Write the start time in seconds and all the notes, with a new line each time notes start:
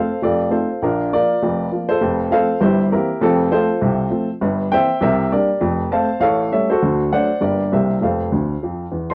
Already playing: A4 C5 F5
0.22 F1 F2 F4 A4 D5
0.50 A3 C4 D#4 F4 A4 C5
0.82 A#1 A#2 D4 F4 A#4
1.13 F3 A#3 F4 A#4 D5
1.43 F1 F2
1.72 F3 A#3
1.89 F4 A4 C5
2.01 F1 F2
2.31 F3 A3 C4 A4 C5 F5
2.60 G1 G2 E4 G4 C5
2.92 E3 A#3 C4 E4 G4 A#4
3.21 F1 F2 C4 F4 A4
3.51 F3 A3 C4 F4 A4 C5
3.81 C2 C3
4.10 F3 A3 C4
4.41 G1 G2
4.71 E3 A#3 C4 C5 E5 G5
5.01 C2 C3 A#4 C5 E5
5.32 G3 A#3 D4 G4 A#4 D5
5.61 F1 F2
5.91 A3 C4 C5 F5 A5
6.20 A1 A2 A4 C#5 F5
6.52 G3 A3 C#4 A4 C#5 E5
6.70 F#4 A4 C5
6.82 D2 D3
7.12 F#3 A3 D4 C5 D5 F#5
7.41 G1 G2 G3 A#3 D4 G4 A#4 D5
7.72 C2 C3 G3 A#3 C4 A#4 C5 E5
8.02 F1 F2 A4 C5 F5
8.32 D2 D3
8.63 F2 F3
8.92 E2 E3
9.10 C6